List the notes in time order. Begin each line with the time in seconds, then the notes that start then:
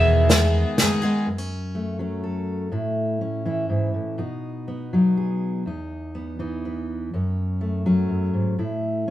Already playing: E2 B2 D#3 G#3 B3 G#4 E5
0.29 D#3 G#3 B3 G#4, snare, closed hi-hat
0.78 D#3 G#3 B3 G#4, snare, closed hi-hat
1.02 D#3 G#3 B3 G#4
1.26 F#2 B3
1.38 C#4
1.75 A3
1.99 F#3 C#4
2.23 A4
2.72 A2 E4
3.21 C#4
3.45 E3 E4
3.69 G#2
3.94 A2
4.18 B2 D#4
4.68 B3
4.93 F#3 D#4
5.17 G#4
5.66 E2 D#4
6.15 B3
6.39 E3 D#4
6.65 B4
7.13 F#2 C#4
7.61 A3
7.86 F#3 C#4
8.09 F#2
8.34 G#2
8.58 A2 E4